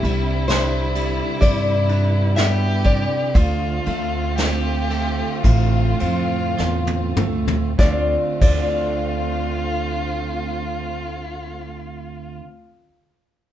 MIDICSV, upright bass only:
0, 0, Header, 1, 2, 480
1, 0, Start_track
1, 0, Tempo, 921659
1, 739, Tempo, 966184
1, 1698, Time_signature, 4, 2, 24, 8
1, 1699, Tempo, 1022147
1, 2179, Tempo, 1073345
1, 2659, Tempo, 1136364
1, 3139, Tempo, 1212121
1, 3619, Tempo, 1250000
1, 5819, End_track
2, 0, Start_track
2, 0, Title_t, "Upright bass"
2, 0, Program_c, 0, 32
2, 16, Note_on_c, 0, 36, 90
2, 624, Note_off_c, 0, 36, 0
2, 739, Note_on_c, 0, 43, 96
2, 1547, Note_off_c, 0, 43, 0
2, 1699, Note_on_c, 0, 38, 110
2, 1898, Note_off_c, 0, 38, 0
2, 1941, Note_on_c, 0, 38, 86
2, 2550, Note_off_c, 0, 38, 0
2, 2658, Note_on_c, 0, 33, 91
2, 2857, Note_off_c, 0, 33, 0
2, 2900, Note_on_c, 0, 41, 77
2, 3124, Note_off_c, 0, 41, 0
2, 3142, Note_on_c, 0, 40, 79
2, 3361, Note_off_c, 0, 40, 0
2, 3379, Note_on_c, 0, 38, 84
2, 3605, Note_off_c, 0, 38, 0
2, 3617, Note_on_c, 0, 38, 82
2, 3752, Note_off_c, 0, 38, 0
2, 3858, Note_on_c, 0, 38, 83
2, 5371, Note_off_c, 0, 38, 0
2, 5819, End_track
0, 0, End_of_file